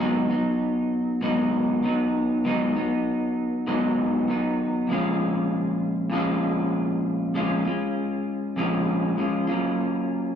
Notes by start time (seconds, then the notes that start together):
0.00 G#2 D#3 F#3 B3 D#4
0.29 F#3 B3 D#4
1.21 G#2 D#3 F#3 B3 D#4
1.83 D#3 F#3 B3 D#4
2.44 G#2 D#3 F#3 B3 D#4
2.75 F#3 B3 D#4
3.66 G#2 D#3 F#3 B3 D#4
4.28 D#3 F#3 B3 D#4
4.87 A#2 F3 G#3
4.92 C#4 F4
6.10 A#2 F3 G#3
6.14 C#4 F4
7.34 A#2 F3 G#3 C#4 F4
7.65 G#3 C#4 F4
8.56 A#2 F3 G#3 C#4 F4
9.17 F3 G#3 C#4 F4
9.47 A#3 C#4 F4
9.52 F#3